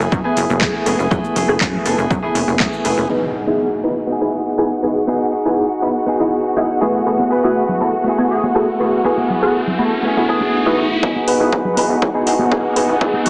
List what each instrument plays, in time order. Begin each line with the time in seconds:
0.00 analog synth bass F#1, clean electric guitar B3 E4 G#4, shaker
0.11 analog synth bass F#2, kick, tambourine, shaker
0.24 analog polysynth A3 B3 E4 G#4, clean electric guitar B3 E4 G#4, tambourine
0.36 analog synth bass F#1, open hi-hat, tambourine, shaker
0.49 analog synth bass F#1, tambourine, high conga, shaker
0.61 analog synth bass F#2, analog polysynth A3 B3 E4 G#4, clean electric guitar A3 B3 E4, kick, clap, tambourine, shaker
0.74 tambourine
0.86 analog synth bass F#1, clean electric guitar A3 B3 E4 G#4, analog polysynth A3 B3 E4 G#4, open hi-hat, tambourine, shaker
0.99 analog synth bass F#1, clean electric guitar B3 E4 G#4, tambourine, shaker
1.11 analog synth bass F#2, clean electric guitar A3 B3 E4 G#4, analog polysynth A3 B3 E4 G#4, kick, tambourine, shaker
1.24 tambourine, high conga, shaker
1.35 analog synth bass F#1, clean electric guitar A3 B3 E4 G#4, open hi-hat, tambourine, low conga, shaker
1.48 analog synth bass F#1, analog polysynth A3 B3 E4 G#4, tambourine, shaker
1.60 analog synth bass F#2, clean electric guitar A3 B3 E4 G#4, kick, clap, shaker
1.73 tambourine, low conga
1.85 analog synth bass F#1, clean electric guitar A3 B3 E4 G#4, analog polysynth A3 B3 E4 A4, open hi-hat, tambourine, high conga, shaker
1.98 analog synth bass F#1, clean electric guitar B3 E4 G#4, tambourine, shaker
2.10 analog synth bass F#2, kick, tambourine, shaker
2.23 analog synth bass F#1, analog polysynth A3 B3 E4 G#4, clean electric guitar B3 E4 G#4, tambourine
2.35 analog synth bass F#1, open hi-hat, tambourine, shaker
2.48 analog synth bass F#1, tambourine, high conga, shaker
2.59 analog synth bass F#2, clean electric guitar A3 B3 E4 G#4, analog polysynth A3 B3 E4 G#4, kick, clap, tambourine, shaker
2.72 tambourine, shaker
2.84 analog synth bass F#1, clean electric guitar A3 B3 E4 G#4, analog polysynth A3 B3 E4 G#4, open hi-hat, tambourine, shaker
2.97 analog synth bass F#1, clean electric guitar B3 E4 G#4, tambourine, shaker
3.09 clean electric guitar B3 D#4 G#4, analog polysynth B3 D#4 E4 G#4, string section F#4 F#5, impact
3.34 clean electric guitar D#4 G#4
3.47 analog polysynth B3 D#4 E4 G#4
3.83 analog polysynth B3 D#4 E4 B4
4.07 clean electric guitar B3 D#4
4.12 clean electric guitar G#4
4.21 analog polysynth B3 D#4 E4 G#4
4.58 analog polysynth B3 D#4 E4 G#4
4.83 analog polysynth B3 D#4 E4 G#4
5.07 clean electric guitar B3 D#4 G#4, analog polysynth B3 D#4 E4 G#4
5.32 clean electric guitar D#4 G#4
5.45 analog polysynth B3 D#4 E4 G#4
5.82 analog polysynth B3 D#4 E4 B4
6.06 clean electric guitar B3 D#4 G#4
6.20 analog polysynth B3 D#4 E4 G#4
6.56 analog polysynth B3 D#4 E4 G#4
6.81 analog polysynth A3 B3 E4 F#4 G#4, clean electric guitar A3 B3 E4 G#4
7.06 analog polysynth A3 B3 E4 F#4 G#4, tambourine, riser
7.19 tambourine, high conga
7.30 clean electric guitar B3 E4 G#4, horn section B4, tambourine
7.44 analog polysynth A3 B3 E4 F#4 G#4, tambourine
7.57 tambourine
7.69 tambourine, low conga
7.80 analog polysynth A3 B3 E4 F#4 A4, tambourine, high conga
7.93 tambourine
8.04 clean electric guitar A3 B3 E4, tambourine
8.09 clean electric guitar G#4
8.18 analog polysynth A3 B3 E4 F#4 G#4, tambourine
8.31 horn section G#4, tambourine
8.43 tambourine, high conga
8.54 analog polysynth A3 B3 E4 F#4 G#4, tambourine
8.68 tambourine
8.80 analog polysynth A3 B3 E4 F#4 G#4, tambourine
8.92 tambourine
9.04 clean electric guitar A3 B3 E4 G#4, analog polysynth A3 B3 E4 F#4 G#4, tambourine
9.17 tambourine, high conga
9.29 clean electric guitar B3 E4 G#4, tambourine, low conga
9.42 analog polysynth A3 B3 E4 F#4 G#4, horn section F#4, tambourine
9.54 tambourine
9.67 tambourine, low conga
9.79 analog polysynth A3 B3 E4 F#4 A4, tambourine, high conga
9.92 tambourine
10.02 clean electric guitar A3 B3 E4, tambourine
10.08 clean electric guitar G#4
10.16 analog polysynth A3 B3 E4 F#4 G#4, tambourine
10.28 analog polysynth A3 B3 E4 F#4 G#4, horn section G#4, tambourine
10.40 tambourine, high conga
10.54 tambourine
10.66 analog polysynth A3 B3 E4 F#4 B4, tambourine
10.78 analog polysynth A3 B3 E4 F#4 G#4, tambourine
10.90 tambourine
11.03 analog synth bass E2, clean electric guitar B3 D#4 G#4, analog polysynth B3 D#4 E4 G#4, string section F#4 F#5, kick, riser
11.15 tambourine, high conga
11.28 analog synth bass E1, horn section B4, open hi-hat, tambourine
11.40 analog synth bass E1, analog polysynth B3 D#4 E4 G#4, tambourine
11.53 analog synth bass E2, clean electric guitar D#4 G#4, kick
11.64 clean electric guitar D#4 G#4, tambourine, low conga
11.77 analog synth bass E1, analog polysynth B3 D#4 E4 B4, clean electric guitar B3 D#4 G#4, horn section B4, open hi-hat, tambourine, high conga
11.90 analog synth bass E1, horn section B4, tambourine
12.01 analog synth bass E2, kick, tambourine
12.14 analog polysynth B3 D#4 E4 G#4, clean electric guitar D#4 G#4, tambourine
12.26 analog synth bass E1, clean electric guitar B3 D#4 G#4, open hi-hat
12.39 analog synth bass E1, tambourine, high conga
12.51 analog synth bass E2, analog polysynth B3 D#4 E4 G#4, clean electric guitar B3 D#4 G#4, kick, tambourine
12.65 tambourine
12.76 analog synth bass E1, clean electric guitar B3 D#4 G#4, analog polysynth B3 D#4 E4 G#4, open hi-hat, tambourine
12.89 analog synth bass E1, clean electric guitar D#4 G#4, tambourine
13.01 analog synth bass E2, analog polysynth B3 D#4 E4 G#4, clean electric guitar B3 D#4 G#4, kick
13.13 tambourine, high conga
13.26 analog synth bass E1, horn section F#4, open hi-hat, tambourine, low conga